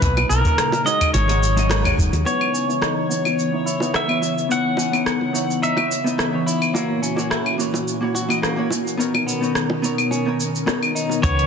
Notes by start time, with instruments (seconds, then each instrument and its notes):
Already playing: analog synth pad A#2, pedal steel guitar B4
0.01 fretless electric bass B1, hollow-body jazz guitar A#2 C#4 D#4 B4, analog synth pad C#3 D#4, kick, closed hi-hat, shaker
0.17 closed hi-hat, high bongo, claves
0.29 fretless electric bass B1, pedal steel guitar A#4, shaker
0.44 hollow-body jazz guitar A#2 C#4 D#4 A#4, kick, closed hi-hat, shaker
0.58 cross-stick, closed hi-hat, shaker
0.72 closed hi-hat, high bongo, shaker
0.84 hollow-body jazz guitar G#3 D#4 F#4 C#5, pedal steel guitar D#5, shaker
1.01 kick, closed hi-hat, claves, shaker
1.14 fretless electric bass G#1, analog synth pad C#3 F#3 G#3, pedal steel guitar C#5, closed hi-hat, high bongo, shaker
1.28 hollow-body jazz guitar G#3 D#4 F#4 C#5, closed hi-hat, shaker
1.43 shaker
1.56 hollow-body jazz guitar G#3 D#4 F#4 D#5, closed hi-hat, shaker
1.70 cross-stick, closed hi-hat, high bongo, shaker
1.84 hollow-body jazz guitar G#3 D#4 F#4 C#5, kick, closed hi-hat, claves, shaker
1.98 fretless electric bass F#1, kick, shaker
2.13 fretless electric bass D#2, closed hi-hat, high bongo, shaker
2.25 analog synth pad C#3 E3 B3 C#5, hollow-body jazz guitar B3 D#4 E4 C#5, clean electric guitar B3, pedal steel guitar C#5, high bongo, shaker
2.41 claves
2.54 clean electric guitar C#4, shaker
2.67 hollow-body jazz guitar B3 D#4 E4 C#5, shaker
2.82 clean electric guitar D#4, cross-stick, high bongo, shaker
3.09 hollow-body jazz guitar E3 B3 D#4 C#5, shaker
3.25 high bongo, claves, shaker
3.39 shaker
3.52 hollow-body jazz guitar B3 D#4 E4 C#5
3.66 clean electric guitar E4, shaker
3.80 hollow-body jazz guitar B3 D#4 E4 D#5, high bongo, shaker
3.94 clean electric guitar B3, pedal steel guitar E5, cross-stick, shaker
4.08 hollow-body jazz guitar B3 E4 C#5 E5, claves
4.22 high bongo, shaker
4.38 shaker
4.49 hollow-body jazz guitar B3 D#4 E4 C#5, pedal steel guitar F#5, shaker
4.77 clean electric guitar C#4, high bongo, shaker
4.92 hollow-body jazz guitar B3 D#4 E4 C#5, claves, shaker
5.06 cross-stick, shaker
5.21 high bongo
5.33 hollow-body jazz guitar B3 D#4 E4 C#5, shaker
5.50 shaker
5.62 clean electric guitar D#4, pedal steel guitar E5, shaker
5.76 hollow-body jazz guitar B3 D#4 E4 C#5, high bongo, claves
5.92 shaker
6.04 hollow-body jazz guitar B3 D#4 E4 D#5, shaker
6.18 cross-stick, high bongo, shaker
6.32 hollow-body jazz guitar E3 B3 D#4 C#5
6.46 clean electric guitar E4, shaker
6.62 claves, shaker
6.73 analog synth pad A#2 E3 C#4 F#4, hollow-body jazz guitar A#3 E4 F#4 C#5, clean electric guitar A#3, high bongo, shaker
7.02 clean electric guitar C#4, shaker
7.16 hollow-body jazz guitar A#3 E4 F#4 C#5, high bongo, shaker
7.30 clean electric guitar E4, cross-stick, shaker
7.46 claves
7.58 hollow-body jazz guitar A#3 E4 F#4 C#5, shaker
7.74 high bongo, shaker
7.88 shaker
8.01 hollow-body jazz guitar A#3 E4 F#4 C#5
8.15 clean electric guitar F#4, high bongo, shaker
8.29 hollow-body jazz guitar A#3 E4 F#4 D#5, claves, shaker
8.42 clean electric guitar A#3, cross-stick, shaker
8.56 hollow-body jazz guitar A#3 E4 F#4 C#5
8.71 high bongo, shaker
8.87 shaker
8.97 analog synth pad B2 D#3 A#4, hollow-body jazz guitar B3 D#4 A#4 C#5, shaker
9.14 high bongo, claves
9.27 clean electric guitar B3, shaker
9.41 hollow-body jazz guitar B3 D#4 A#4 C#5, shaker
9.55 cross-stick, shaker
9.70 high bongo
9.82 hollow-body jazz guitar B3 D#4 A#4 C#5, shaker
9.98 claves, shaker
10.11 clean electric guitar C#4, high bongo, shaker
10.25 hollow-body jazz guitar B3 D#4 A#4 C#5
10.40 shaker
10.55 shaker
10.66 hollow-body jazz guitar B3 D#4 A#4 C#5, cross-stick, high bongo, shaker
10.83 claves, shaker
10.95 clean electric guitar D#4, shaker
11.10 high bongo, shaker
11.22 fretless electric bass C#2, analog synth pad C#3 E3 B3 C#4, hollow-body jazz guitar E3 C#4 D#4 B4, clean electric guitar B3, pedal steel guitar C#5, kick, closed hi-hat, shaker
11.39 closed hi-hat